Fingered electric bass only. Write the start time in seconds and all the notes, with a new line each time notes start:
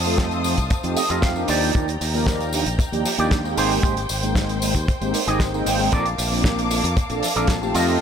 Already playing: F2
0.58 C2
0.84 F2
1.10 F2
1.49 D#2
1.75 D#2
2.01 D#2
2.66 A#1
2.79 muted fingered electric bass stroke
2.92 D#2
3.19 D#2
3.57 G#1
4.10 G#1
4.75 D#2
5.01 G#1
5.27 G#1
5.66 G#1
5.93 A#1
6.18 A#1
6.84 F2
6.97 muted fingered electric bass stroke
7.10 A#1
7.36 A#1
7.75 F2